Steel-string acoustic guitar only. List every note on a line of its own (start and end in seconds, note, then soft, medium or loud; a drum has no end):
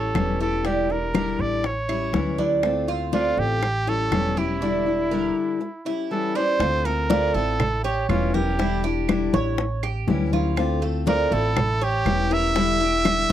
0.00 0.14 G3 soft
0.00 0.15 C#4 soft
0.00 0.14 E4 soft
0.15 0.39 E3 medium
0.15 0.40 G3 medium
0.15 0.40 C#4 medium
0.15 0.39 E4 medium
0.40 0.64 G3 soft
0.40 0.65 C#4 soft
0.40 0.64 E4 soft
0.64 0.89 D3 medium
0.64 0.89 G3 medium
0.64 0.90 D4 medium
0.64 0.88 E4 medium
0.89 1.14 G3 soft
0.89 1.14 D4 soft
0.89 1.13 E4 medium
1.14 1.63 D3 medium
1.14 1.63 G3 medium
1.14 1.64 D4 medium
1.14 1.64 E4 medium
1.64 muted steel-string acoustic guitar stroke medium
1.88 2.13 G3 soft
1.88 2.13 C#4 soft
1.88 2.13 E4 soft
2.13 2.37 E3 medium
2.13 2.38 G3 medium
2.13 2.38 C#4 medium
2.13 2.37 E4 medium
2.38 2.63 G3 soft
2.38 2.63 C#4 soft
2.38 2.62 E4 soft
2.63 2.87 D3 medium
2.63 2.87 A3 medium
2.63 2.87 C4 medium
2.63 2.86 F4 medium
2.87 3.12 A3 soft
2.87 3.12 C4 soft
2.87 3.12 F4 soft
3.12 3.61 D3 medium
3.12 3.62 A3 medium
3.12 3.62 C4 medium
3.12 3.62 F4 medium
3.62 muted steel-string acoustic guitar stroke medium
3.87 4.11 G3 soft
3.87 4.11 C#4 soft
3.87 4.11 E4 soft
4.12 4.36 E3 medium
4.12 4.36 G3 medium
4.12 4.36 C#4 medium
4.12 4.35 E4 medium
4.37 4.61 G3 soft
4.37 4.61 C#4 soft
4.37 4.61 E4 soft
4.61 4.85 D3 medium
4.61 4.86 G3 medium
4.61 4.86 D4 medium
4.61 4.85 E4 medium
4.86 5.11 G3 soft
4.86 5.11 D4 soft
4.86 5.10 E4 medium
5.11 5.60 D3 medium
5.11 5.60 G3 medium
5.11 5.61 D4 medium
5.11 5.60 E4 medium
5.61 muted steel-string acoustic guitar stroke medium
5.85 6.10 G3 soft
5.85 6.10 C#4 soft
5.85 6.09 E4 soft
6.11 6.35 E3 medium
6.11 6.35 G3 medium
6.11 6.35 C#4 medium
6.11 6.34 E4 medium
6.35 6.60 G3 soft
6.35 6.60 C#4 soft
6.35 6.59 E4 soft
6.60 6.84 D3 medium
6.60 6.85 A3 medium
6.60 6.85 C4 medium
6.60 6.84 F4 medium
6.85 7.09 A3 soft
6.85 7.10 C4 soft
6.85 7.09 F4 medium
7.10 7.34 D3 medium
7.10 7.34 A3 medium
7.10 7.34 C4 medium
7.10 7.34 F4 medium
7.35 7.60 A3 soft
7.35 7.59 C4 soft
7.35 7.59 F4 soft
7.60 muted steel-string acoustic guitar stroke medium
8.09 8.33 E3 medium
8.09 8.34 G3 medium
8.09 8.34 C#4 medium
8.09 8.33 E4 medium
8.34 8.58 G3 soft
8.34 8.58 C#4 soft
8.34 8.58 E4 medium
8.58 8.83 D3 medium
8.58 8.83 G3 medium
8.58 8.83 D4 medium
8.58 8.82 E4 medium
8.84 9.08 G3 soft
8.84 9.08 D4 soft
8.84 9.08 E4 soft
9.08 9.32 D3 medium
9.08 9.33 G3 medium
9.08 9.33 D4 medium
9.08 9.32 E4 medium
9.33 9.57 G3 soft
9.33 9.57 D4 soft
9.33 9.57 E4 medium
9.58 muted steel-string acoustic guitar stroke medium
10.07 10.31 E3 medium
10.07 10.32 G3 medium
10.07 10.32 C#4 medium
10.07 10.31 E4 medium
10.32 10.57 G3 soft
10.32 10.57 C#4 soft
10.32 10.56 E4 soft
10.56 10.81 D3 medium
10.56 10.81 A3 medium
10.56 10.82 C4 medium
10.56 10.80 F4 medium
10.81 11.06 A3 soft
10.81 11.06 C4 medium
10.81 11.06 F4 medium
11.06 11.30 D3 medium
11.06 11.31 A3 medium
11.06 11.31 C4 medium
11.06 11.29 F4 medium
11.31 11.56 A3 soft
11.31 11.56 C4 soft
11.31 11.55 F4 soft
11.56 muted steel-string acoustic guitar stroke medium
12.05 12.29 E3 medium
12.05 12.30 G3 medium
12.05 12.30 C#4 medium
12.05 12.29 E4 medium
12.30 12.54 G3 soft
12.30 12.55 C#4 soft
12.30 12.54 E4 medium
12.55 12.79 D3 medium
12.55 12.79 G3 medium
12.55 12.80 D4 medium
12.55 12.79 E4 medium
12.80 13.05 G3 soft
12.80 13.05 D4 soft
12.80 13.04 E4 medium
13.05 13.29 D3 medium
13.05 13.29 G3 medium
13.05 13.30 D4 medium
13.05 13.28 E4 medium